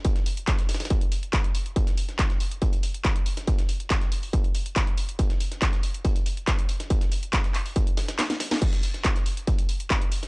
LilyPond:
\new DrumStaff \with { instrumentName = "Drums" } \drummode { \time 4/4 \tempo 4 = 140 <hh bd>16 <hh sn>16 <hh hho>16 hh16 <hc hh bd sn>16 <hh sn>16 <hh hho sn>32 <hh sn>32 <hh hho sn>32 <hh sn>32 <hh bd>16 hh16 <hh hho>16 hh16 <hc hh bd sn>16 hh16 <hh hho>16 hh16 | <hh bd>16 <hh sn>16 <hh hho>16 <hh sn>16 <hc hh bd sn>16 <hh sn>16 <hh hho>16 hh16 <hh bd>16 hh16 <hh hho>16 hh16 <hc hh bd sn>16 hh16 <hh hho>16 <hh sn>16 | <hh bd>16 <hh sn>16 <hh hho>16 hh16 <hc hh bd sn>16 <hh sn>16 <hh hho>16 hho16 <hh bd>16 hh16 <hh hho>16 hh16 <hc hh bd sn>16 hh16 <hh hho>16 hh16 | <hh bd>16 <hh sn>16 <hh hho>16 <hh sn>16 <hc hh bd sn>16 <hh sn>16 <hh hho>16 hh16 <hh bd>16 hh16 <hh hho>16 hh16 <hc hh bd sn>16 hh16 <hh hho>16 <hh sn>16 |
<hh bd>16 <hh sn>16 <hh hho>16 hh16 <hc hh bd sn>16 <hh sn>16 <hc hh hho>16 hho16 <hh bd>16 hh16 <hh hho sn>16 <hh sn>16 <hc hh sn>16 <hh sn>16 <hh hho sn>16 <hh sn>16 | <cymc hh bd>16 <hh sn>16 <hh hho>16 <hh sn>16 <hc hh bd sn>16 <hh sn>16 <hh hho>16 hh16 <hh bd>16 hh16 <hh hho>16 hh16 <hc hh bd sn>16 hh16 <hh hho>16 <hh sn>16 | }